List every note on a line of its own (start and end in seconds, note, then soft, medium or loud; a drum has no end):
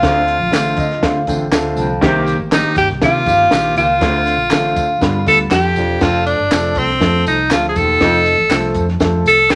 0.00 0.23 D2 medium
0.00 0.35 D2 loud
0.00 0.35 D3 medium
0.00 0.35 A3 medium
0.00 0.35 C4 medium
0.00 1.28 F4 medium
0.00 0.35 F4 loud
0.00 1.27 F5 medium
0.00 kick loud
0.00 snare loud
0.00 closed hi-hat medium
0.05 tambourine soft
0.28 closed hi-hat medium
0.40 0.51 A#1 medium
0.51 0.74 A1 medium
0.51 0.84 D3 medium
0.51 0.85 A3 medium
0.51 0.85 C4 medium
0.51 0.85 F4 medium
0.51 snare loud
0.51 clap medium
0.51 closed hi-hat medium
0.51 tambourine medium
0.77 0.99 D3 medium
0.77 1.01 D#5 medium
0.77 kick medium
0.77 closed hi-hat medium
0.77 tambourine soft
0.91 snare soft
1.02 1.18 D3 medium
1.02 1.24 D3 loud
1.02 1.19 A3 medium
1.02 1.19 C4 medium
1.02 1.19 F4 medium
1.02 1.26 F5 medium
1.02 kick medium
1.02 snare loud
1.02 closed hi-hat medium
1.02 tambourine soft
1.27 1.49 A1 medium
1.27 1.44 D3 medium
1.27 1.44 A3 medium
1.27 1.44 C4 medium
1.27 1.44 F4 medium
1.27 1.51 G5 medium
1.27 kick medium
1.27 closed hi-hat medium
1.27 tambourine medium
1.52 1.74 D2 medium
1.52 1.85 D3 medium
1.52 1.85 A3 medium
1.52 1.85 C4 medium
1.52 1.85 F4 medium
1.52 1.76 A5 medium
1.52 snare loud
1.52 clap medium
1.52 closed hi-hat medium
1.52 tambourine medium
1.77 1.98 C2 medium
1.77 1.97 F2 medium
1.77 2.00 A5 medium
1.77 closed hi-hat medium
1.77 tambourine medium
2.01 2.34 C2 loud
2.01 2.22 C3 medium
2.01 2.34 D#3 loud
2.01 2.34 A#3 loud
2.01 2.34 C4 loud
2.01 2.35 G4 loud
2.01 kick medium
2.01 snare loud
2.01 closed hi-hat medium
2.26 closed hi-hat medium
2.26 tambourine soft
2.39 2.61 A1 medium
2.51 2.84 D#3 medium
2.51 2.84 A#3 medium
2.51 2.84 C4 medium
2.51 2.76 D#4 medium
2.51 2.85 G4 medium
2.51 2.75 D#5 medium
2.51 snare loud
2.51 clap medium
2.51 closed hi-hat medium
2.51 tambourine medium
2.76 2.88 G1 medium
2.76 2.89 G4 loud
2.76 2.88 G5 medium
2.76 kick medium
2.76 closed hi-hat medium
2.76 tambourine soft
2.89 3.00 C2 medium
2.89 snare soft
3.01 3.23 C3 loud
3.01 3.18 D#3 medium
3.01 3.18 A#3 medium
3.01 3.18 C4 medium
3.01 3.74 F4 loud
3.01 3.19 G4 medium
3.01 3.73 F5 medium
3.01 kick medium
3.01 snare loud
3.01 closed hi-hat medium
3.01 tambourine soft
3.26 3.48 G1 medium
3.26 3.43 D#3 medium
3.26 3.43 A#3 medium
3.26 3.43 C4 medium
3.26 3.43 G4 medium
3.26 kick medium
3.26 closed hi-hat medium
3.26 tambourine medium
3.51 3.73 A#1 medium
3.51 3.84 D#3 medium
3.51 3.84 A#3 medium
3.51 3.84 C4 medium
3.51 3.85 G4 medium
3.51 snare loud
3.51 clap medium
3.51 closed hi-hat medium
3.51 tambourine medium
3.76 3.98 C#2 medium
3.76 3.97 A#2 medium
3.76 5.23 F4 loud
3.76 5.23 F5 medium
3.76 closed hi-hat medium
3.76 tambourine medium
4.01 4.34 D2 loud
4.01 4.22 D2 medium
4.01 4.34 D3 loud
4.01 4.34 A3 medium
4.01 4.34 C4 medium
4.01 4.34 F4 loud
4.01 kick loud
4.01 snare loud
4.01 closed hi-hat medium
4.01 tambourine soft
4.26 closed hi-hat medium
4.26 tambourine soft
4.38 4.49 A#1 medium
4.50 4.73 A1 medium
4.50 4.83 D3 medium
4.50 4.83 A3 medium
4.50 4.84 C4 medium
4.50 4.84 F4 medium
4.50 snare loud
4.50 clap medium
4.50 closed hi-hat medium
4.50 tambourine medium
4.76 4.98 D3 medium
4.76 kick medium
4.76 closed hi-hat medium
4.76 tambourine soft
5.01 5.23 G2 medium
5.01 5.17 D3 medium
5.01 5.18 G3 medium
5.01 5.18 B3 medium
5.01 5.18 F4 medium
5.01 kick medium
5.01 snare loud
5.01 closed hi-hat medium
5.01 tambourine soft
5.26 5.48 D2 medium
5.26 5.43 D3 medium
5.26 5.43 G3 medium
5.26 5.43 B3 medium
5.26 5.43 F4 medium
5.26 5.39 A4 loud
5.26 kick medium
5.26 closed hi-hat medium
5.26 tambourine medium
5.40 closed hi-hat soft
5.51 5.77 F2 medium
5.51 5.76 F4 medium
5.51 6.04 G4 medium
5.51 5.75 A4 medium
5.51 snare loud
5.51 clap medium
5.51 closed hi-hat medium
5.51 tambourine medium
5.76 5.97 E1 medium
5.76 5.96 F2 medium
5.76 6.25 D4 medium
5.76 6.25 F4 medium
5.76 closed hi-hat medium
5.76 tambourine medium
6.01 6.34 F1 loud
6.01 6.21 F2 medium
6.01 6.33 F3 medium
6.01 6.33 A3 medium
6.01 6.33 C4 medium
6.01 6.26 F4 loud
6.01 6.34 A4 medium
6.01 kick loud
6.01 snare loud
6.01 crash medium
6.01 tambourine soft
6.26 6.80 D4 medium
6.26 closed hi-hat medium
6.26 tambourine soft
6.39 6.50 G1 medium
6.51 6.73 F1 medium
6.51 6.83 F3 medium
6.51 6.83 A3 medium
6.51 6.84 C4 medium
6.51 6.84 A4 medium
6.51 snare loud
6.51 clap medium
6.51 closed hi-hat medium
6.51 tambourine medium
6.75 6.98 C2 medium
6.75 7.27 C4 medium
6.75 kick loud
6.75 closed hi-hat medium
6.75 tambourine soft
6.90 snare soft
7.00 7.23 F2 loud
7.00 7.33 F3 medium
7.00 7.33 A3 medium
7.00 7.33 C4 medium
7.00 7.33 A4 medium
7.00 kick medium
7.00 snare loud
7.00 closed hi-hat medium
7.00 tambourine soft
7.26 7.48 C2 medium
7.26 7.50 D#4 medium
7.26 closed hi-hat medium
7.26 tambourine medium
7.51 7.72 D2 medium
7.51 7.83 F3 medium
7.51 7.84 A3 medium
7.51 7.83 C4 medium
7.51 7.68 F4 medium
7.51 7.84 A4 medium
7.51 snare loud
7.51 clap medium
7.51 closed hi-hat medium
7.51 tambourine medium
7.69 7.78 G#4 medium
7.76 7.98 E1 medium
7.76 7.96 D#2 medium
7.76 8.76 A4 medium
7.76 kick medium
7.76 closed hi-hat medium
7.76 tambourine medium
8.00 8.33 F1 loud
8.00 8.21 F2 loud
8.00 8.33 F3 medium
8.00 8.33 A3 medium
8.00 8.33 C4 medium
8.00 8.33 D#4 medium
8.00 kick medium
8.00 snare loud
8.00 closed hi-hat medium
8.26 closed hi-hat medium
8.38 8.49 A1 medium
8.50 8.72 C2 medium
8.50 8.83 F3 medium
8.50 8.83 A3 medium
8.50 8.83 C4 medium
8.50 8.84 A4 loud
8.50 snare loud
8.50 clap medium
8.50 closed hi-hat medium
8.50 tambourine medium
8.74 8.97 F2 medium
8.74 kick medium
8.74 closed hi-hat medium
8.74 tambourine soft
8.89 snare soft
9.00 9.22 F2 loud
9.00 9.33 F3 medium
9.00 9.33 A3 medium
9.00 9.33 C4 medium
9.00 9.33 A4 medium
9.00 kick medium
9.00 snare loud
9.00 closed hi-hat medium
9.00 tambourine soft
9.25 9.47 C2 medium
9.25 9.53 A4 loud
9.25 closed hi-hat medium
9.25 tambourine medium
9.50 9.55 D#2 medium
9.50 9.55 F3 medium
9.50 9.55 A3 medium
9.50 9.55 C4 medium
9.50 9.55 G4 loud
9.50 9.55 A4 medium
9.50 snare loud
9.50 clap medium
9.50 closed hi-hat medium
9.50 tambourine medium